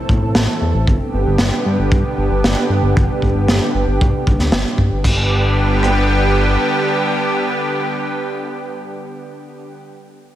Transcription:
Already playing: analog synth pad E3 A3 C4 A4
0.09 analog synth bass A2, kick
0.22 analog synth bass A2
0.35 analog synth bass A1, snare
0.61 analog synth bass E2
0.74 analog synth bass A1
0.87 analog synth bass G1, analog synth pad D3 G3 B3 G4, kick
1.14 analog synth bass G1
1.27 analog synth bass G1
1.38 analog synth bass G1, snare
1.66 analog synth bass G2
1.79 analog synth bass G1
1.92 analog synth bass G2, kick
2.18 analog synth bass G1
2.31 analog synth bass G1
2.44 analog synth bass G1, snare
2.70 analog synth bass G2
2.83 analog synth bass G1
2.97 analog synth bass G1, kick
3.22 analog synth bass G1, kick
3.35 analog synth bass G1
3.48 analog synth bass G1, snare
3.74 analog synth bass G1
3.87 analog synth bass G1
4.01 analog synth bass G2, kick
4.27 analog synth bass G1, kick
4.39 analog synth bass D2, snare
4.52 analog synth bass G1, snare
4.78 analog synth bass G2, kick
4.92 analog synth bass G1
5.04 analog synth bass G1, analog synth pad D3 G3 B3 G4, kick, crash
5.83 cross-stick

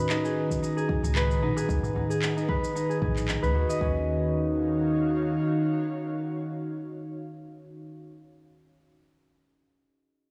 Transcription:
Already playing: analog synth pad D#3 D#4 F#4 C#5 A#5, harp C#4 F#4 B4
0.09 harp D#4, clap, shaker
0.24 harp G#4, shaker
0.43 analog synth pad B4
0.50 kick, darbuka tek, shaker
0.63 harp D#4, shaker
0.77 harp G#4, darbuka ka, shaker
0.81 analog synth pad F#5
0.88 kick, darbuka ka
1.03 upright bass C#2, harp D#4, darbuka tek, darbuka dum, shaker
1.16 harp B4, clap, shaker
1.31 shaker
1.42 upright bass A#1, harp D#4
1.57 harp G#4, darbuka tek, shaker
1.69 upright bass D#2, kick, shaker
1.83 darbuka ka, darbuka dum, shaker
1.95 upright bass D#2, harp D#4, darbuka tek
2.10 harp G#4, shaker
2.22 clap, shaker
2.36 harp D#4, shaker
2.48 harp B4, kick
2.63 darbuka ka, shaker
2.75 harp D#4, shaker
2.89 harp G#4, shaker
3.01 upright bass A#1, harp G#4, kick, darbuka ka, darbuka dum
3.16 clap, shaker
3.28 harp D#4, clap, shaker
3.42 upright bass C#2, harp B4, darbuka ka, darbuka tek, shaker
3.54 upright bass D#2, harp F#4, darbuka tek
3.69 harp D#5, shaker
3.80 upright bass D#2, analog synth pad D#3, harp C#4, kick
3.89 analog synth pad D#4
3.97 analog synth pad F#4
4.04 analog synth pad C#5
4.12 analog synth pad F5

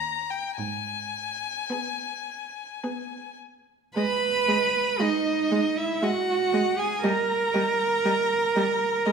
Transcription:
Already playing: cello D#2, viola A#3, violin G4 A#5
0.30 violin G5
0.57 cello G#2, violin G#5
1.70 viola B3, violin G#4
2.84 viola B3, violin G#4
3.96 viola G#3, cello B4, violin D#5 B5
4.48 viola G#3, violin D#5
5.00 viola G#3, cello D#4, violin D#5
5.51 viola G#3, violin D#5
5.76 cello E4, violin E5
6.02 viola G#3, cello F#4, violin D#5 F#5
6.53 viola G#3, violin D#5
6.78 cello G#4, violin G#5
7.03 viola G3, cello A#4, violin D#5 A#5
7.54 viola G3, violin D#5
8.05 viola G3, violin D#5
8.56 viola G3, violin D#5
9.06 viola G#3, violin D#5

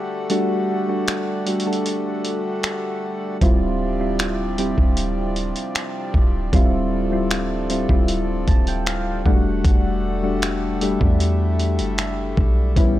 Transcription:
Already playing: harmonium D3 G3 A3 F#4, synth keys G3 A3 D4 G4 A4
0.30 synth keys G3 A3 D4 F#4, closed hi-hat
0.88 synth keys G3 A3 D4 F#4
1.08 finger snap, closed hi-hat
1.46 synth keys G3 A3 D4 F#4, closed hi-hat
1.60 closed hi-hat
1.66 synth keys G3 A3 D4 A4
1.73 closed hi-hat
1.86 closed hi-hat
2.25 closed hi-hat
2.63 finger snap, closed hi-hat
3.41 808-style bass D1, harmonium C3 F3 G3 D4, synth keys G3 C4 E4 F4, kick, closed hi-hat
4.00 synth keys G3 C4 E4 F4
4.19 finger snap, closed hi-hat
4.58 synth keys G3 C4 E4 G4, closed hi-hat
4.78 808-style bass D1, kick
4.97 closed hi-hat
5.36 closed hi-hat
5.56 closed hi-hat
5.75 finger snap, closed hi-hat
6.14 808-style bass D1, kick
6.53 808-style bass D1, synth keys G3 C4 E4 F4, harmonium A3, kick, closed hi-hat
7.12 synth keys G3 C4 E4 F4
7.31 finger snap, closed hi-hat
7.70 synth keys G3 C4 E4 F4, closed hi-hat
7.89 808-style bass D1, synth keys G3 C4 E4 F4, kick
8.08 closed hi-hat
8.48 808-style bass D1, synth keys A5, kick, closed hi-hat
8.67 synth keys G5, closed hi-hat
8.86 synth keys F5, finger snap, closed hi-hat
9.25 808-style bass E1, harmonium D3 G3 A3 F#4, synth keys G3 A3 D4 E4 F#5, kick
9.33 synth keys F#4
9.65 808-style bass E1, kick, closed hi-hat
10.23 synth keys G3 A3 D4 F#4
10.42 finger snap, closed hi-hat
10.81 synth keys G3 A3 D4 G4, harmonium E4, closed hi-hat
11.01 808-style bass E2, kick
11.20 closed hi-hat
11.59 closed hi-hat
11.79 808-style bass F#1, closed hi-hat
11.98 finger snap, closed hi-hat
12.37 808-style bass B1, kick
12.76 808-style bass A1, harmonium C#3 G4, synth keys G3 B3 C#4 E4, kick, closed hi-hat

